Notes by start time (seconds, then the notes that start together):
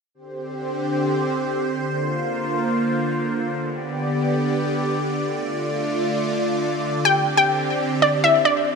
0.15 D3 C4 G4 C5
1.87 D3 A#3 F4
3.60 B3 G4 D5
5.33 A3 F4
7.05 C4 G4 G5
7.37 G5
8.02 D5
8.24 E5
8.45 D5